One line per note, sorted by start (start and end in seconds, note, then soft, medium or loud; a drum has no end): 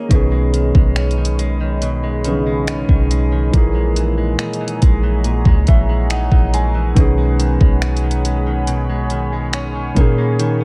0.00 0.18 D#3 medium
0.00 0.19 A#3 medium
0.00 0.57 C#4 medium
0.00 1.04 G#4 medium
0.09 0.72 B1 loud
0.09 1.81 B2 medium
0.09 2.20 D#3 medium
0.09 2.21 B3 medium
0.09 2.22 C#4 medium
0.09 10.64 G#4 medium
0.09 3.50 C#5 medium
0.09 3.50 D#5 medium
0.09 3.50 B5 medium
0.09 kick loud
0.09 closed hi-hat medium
0.14 2.23 G#4 medium
0.32 0.75 G#3 medium
0.54 1.17 D#3 medium
0.54 closed hi-hat medium
0.75 2.85 B1 loud
0.75 1.39 G#3 medium
0.75 kick loud
0.96 2.68 C#4 medium
0.96 finger snap loud
0.96 closed hi-hat soft
1.11 closed hi-hat medium
1.18 1.60 D#3 medium
1.25 closed hi-hat medium
1.39 2.03 G#3 medium
1.39 closed hi-hat medium
1.61 2.25 D#3 medium
1.82 3.53 B2 medium
1.82 closed hi-hat medium
2.04 2.46 G#3 medium
2.24 2.31 C#3 soft
2.24 2.89 D#3 medium
2.24 3.54 B3 medium
2.24 3.54 C#4 medium
2.24 3.55 G#4 medium
2.24 closed hi-hat medium
2.31 3.54 D#3 medium
2.47 3.10 G#3 medium
2.67 4.39 C#4 medium
2.67 finger snap loud
2.67 closed hi-hat medium
2.89 3.51 B1 loud
2.89 3.32 D#3 medium
2.89 kick medium
3.11 3.74 G#3 medium
3.11 closed hi-hat medium
3.32 3.96 D#3 medium
3.51 4.36 A#1 loud
3.51 5.23 A#2 medium
3.51 6.93 D#3 medium
3.51 6.91 E3 medium
3.51 6.92 A#3 medium
3.51 6.93 C#5 medium
3.51 9.93 F#5 medium
3.51 6.93 A#5 medium
3.51 kick loud
3.51 closed hi-hat medium
3.57 6.94 G#4 medium
3.75 4.17 G#3 medium
3.96 4.60 E3 medium
3.96 closed hi-hat medium
4.18 4.82 G#3 medium
4.39 6.10 D#4 medium
4.39 finger snap loud
4.39 closed hi-hat soft
4.53 closed hi-hat medium
4.61 5.02 E3 medium
4.68 closed hi-hat medium
4.82 5.44 A#1 loud
4.82 5.46 G#3 medium
4.82 kick medium
4.82 closed hi-hat medium
5.04 5.66 E3 medium
5.24 6.96 A#2 medium
5.24 closed hi-hat medium
5.45 5.66 C#2 medium
5.45 5.89 G#3 medium
5.45 kick medium
5.67 6.30 A#1 loud
5.67 6.31 E3 medium
5.67 6.08 E5 medium
5.67 kick medium
5.67 closed hi-hat medium
5.89 6.53 G#3 medium
6.10 7.82 D#4 medium
6.10 6.51 F#5 medium
6.10 finger snap loud
6.10 closed hi-hat medium
6.32 6.94 A#1 loud
6.32 6.74 E3 medium
6.32 kick medium
6.54 7.17 G#3 medium
6.54 6.94 G#5 medium
6.54 closed hi-hat medium
6.75 7.05 E3 medium
6.94 7.58 B1 loud
6.94 8.67 B2 medium
6.94 9.91 D#3 medium
6.94 9.92 B3 medium
6.94 10.64 C#5 medium
6.94 9.93 B5 medium
6.94 kick loud
6.94 closed hi-hat medium
6.98 9.93 C#4 medium
6.98 9.94 G#4 medium
7.18 7.60 G#3 medium
7.39 8.03 D#3 medium
7.39 closed hi-hat medium
7.61 9.92 B1 loud
7.61 8.25 G#3 medium
7.61 kick loud
7.82 9.53 C#4 medium
7.82 finger snap loud
7.82 closed hi-hat soft
7.97 closed hi-hat medium
8.04 8.46 D#3 medium
8.11 closed hi-hat medium
8.25 8.89 G#3 medium
8.25 closed hi-hat medium
8.47 9.11 D#3 medium
8.67 10.05 B2 medium
8.67 closed hi-hat medium
8.90 9.32 G#3 medium
9.10 9.75 D#3 medium
9.10 closed hi-hat medium
9.33 10.18 G#3 medium
9.53 10.42 C#4 medium
9.53 finger snap loud
9.53 closed hi-hat medium
9.75 9.96 D#3 medium
9.94 10.64 A#2 loud
9.94 10.64 D#3 medium
9.94 10.39 D#3 medium
9.94 10.64 A#3 medium
9.94 10.64 C#4 medium
9.94 10.64 D#5 medium
9.94 10.64 A#5 medium
9.94 kick loud
9.94 closed hi-hat medium
10.00 10.64 G#4 medium
10.18 10.64 A#3 medium
10.39 10.64 D#3 medium
10.39 closed hi-hat medium
10.61 10.64 C#4 medium